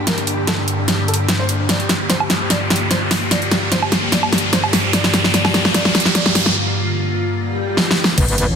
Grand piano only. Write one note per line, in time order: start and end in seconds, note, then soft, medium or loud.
0.07 0.12 A#4 loud
0.18 0.22 D4 medium
0.27 0.33 D4 medium
0.38 0.43 D4 medium
0.47 0.53 A4 medium
0.58 0.63 D4 medium
0.79 0.83 D4 medium
0.88 0.93 D4 medium
0.99 1.04 D4 medium
1.08 1.14 A4 medium
1.19 1.24 D4 medium
1.29 1.34 D4 medium
1.39 1.44 C5 medium
1.49 1.54 D4 medium
1.60 1.64 D4 medium
1.69 1.75 D5 medium
1.80 1.85 G4 medium
2.00 2.05 G4 medium
2.10 2.15 C5 medium
2.20 2.25 G4 medium
2.41 2.46 G4 medium
2.50 2.56 D5 medium
2.61 2.66 G4 medium
2.70 2.76 G4 medium
2.81 2.86 G4 medium
2.91 2.96 C5 medium
3.02 3.06 G4 medium
3.22 3.27 G4 medium
3.31 3.37 D5 loud
3.42 3.47 G4 medium
3.52 3.57 G4 medium
3.62 3.67 G4 medium
3.72 3.77 C5 medium
3.83 3.87 G4 medium
4.03 4.08 G4 medium
4.12 4.18 D5 medium
4.23 4.28 G4 medium
4.33 4.38 G4 medium
4.43 4.48 G4 medium
4.53 4.58 C5 medium
4.64 4.68 G4 medium
4.84 4.89 G4 medium
4.93 4.99 D5 loud
5.04 5.09 G4 medium
5.14 5.19 G4 medium
5.24 5.29 G4 medium
5.34 5.39 D5 loud
5.45 5.50 G4 medium
5.54 5.60 G4 medium
5.74 5.80 D5 loud
5.85 5.90 G4 medium
5.95 6.00 G4 medium
6.06 6.10 G4 medium
6.15 6.20 D5 loud
6.26 6.31 G4 medium
6.35 6.41 G4 medium
6.46 6.51 G4 medium